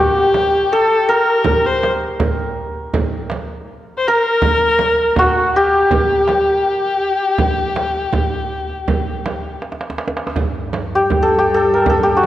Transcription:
Already playing: kamancheh G4, santur G4 A#4
0.34 tombak tek, frame drum
0.72 kamancheh A4, santur A4
1.09 santur A#4, kamancheh A#4
1.44 frame drum, tombak dum
1.64 kamancheh C5, tombak ka
1.83 tombak tek, frame drum
2.19 tombak dum, frame drum
2.39 tombak ka
2.94 tombak dum, frame drum
3.30 tombak tek, frame drum
3.98 kamancheh C5
4.07 kamancheh A#4, santur A#4
4.42 frame drum, tombak dum
4.61 tombak ka
4.79 tombak tek, frame drum
5.16 kamancheh F#4, santur F#4, tombak dum, frame drum
5.26 kamancheh G4
5.33 kamancheh F#4, tombak ka
5.55 kamancheh G4, santur G4
5.90 tombak dum, frame drum
6.28 tombak tek, frame drum
7.39 tombak dum, frame drum
7.58 tombak ka
7.76 tombak tek, frame drum
8.13 frame drum, tombak dum
8.50 tombak ka
8.69 tombak ka
8.88 frame drum, tombak dum
9.25 tombak tek, frame drum
9.62 tombak tek
9.72 tombak ka
9.81 tombak tek
9.90 tombak ka
9.98 tombak tek
10.08 tombak ka
10.17 tombak tek
10.27 tombak ka
10.36 cello section G2, tombak dum, frame drum
10.56 tombak ka
10.74 tombak tek, frame drum
10.95 santur G4
11.10 frame drum, tombak dum
11.23 santur A4
11.39 santur G4
11.54 santur A4
11.74 santur A#4
11.86 santur A4, frame drum, tombak dum
12.03 santur G4
12.17 santur F#4

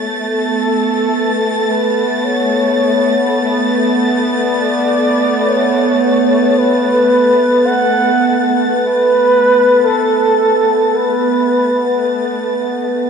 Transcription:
Already playing: violin section A3 A6, synth drone B3
0.08 flugelhorn A4
1.71 flugelhorn B4
2.25 flugelhorn C#5
4.41 flugelhorn D5
5.47 flugelhorn C#5
6.59 flugelhorn B4
7.66 flugelhorn F#5
8.77 flugelhorn B4
9.85 flugelhorn A4
10.96 flugelhorn B4

